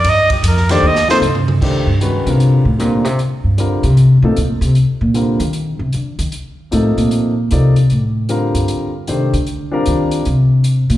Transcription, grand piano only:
X:1
M:4/4
L:1/8
Q:"Swing" 1/4=153
K:Cdor
V:1 name="Grand piano"
z3 [E,A,DGc] z [C,F,B,EA] z2 | [E,A,DGc] z [E,_A,_D^F=B] [=D,G,C=F_B]2 z [D,G,CFB] z | z2 [D,G,CFB] z2 [C,F,B,EA] z2 | z2 [D,G,CFB] z4 z |
z2 [C,F,B,EA]3 z [F,B,EAd] z | z2 [D,G,CFB]3 z [E,A,DGc] z | z [G,CDFB]3 z4 |]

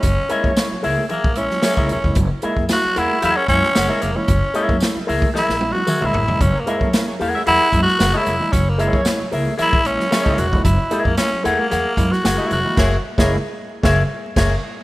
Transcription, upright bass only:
X:1
M:4/4
L:1/16
Q:1/4=113
K:F#mix
V:1 name="Upright bass" clef=bass
F,,, z2 F,, z2 C,, z2 A,,,2 z2 C,, E,,, ^E,,, | F,,, z2 F,, z2 E,, z E,, z F,, z F,,, z ^E,,, z | F,,, z2 F,, z2 C,, z2 A,,,2 z2 C,, =A,,, ^E,,, | F,,, z2 F,, z2 E,, z E,, z F,, z F,,, z ^E,,, z |
F,,,3 F,, z2 C,, z2 A,,,2 z2 C,, E,,, ^E,,, | F,,, z2 F,, z2 E,, z E,, z F,, z F,,, z ^E,,, z | F,,,2 z F,,,2 z3 F,,,2 z2 F,,,2 z2 |]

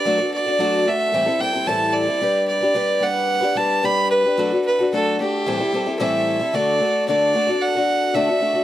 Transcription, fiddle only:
X:1
M:4/4
L:1/8
Q:1/4=111
K:Dmix
V:1 name="Fiddle"
d d2 e2 g a d- | d d2 f2 a b B- | B B A G3 e2 | d2 d2 f2 e2 |]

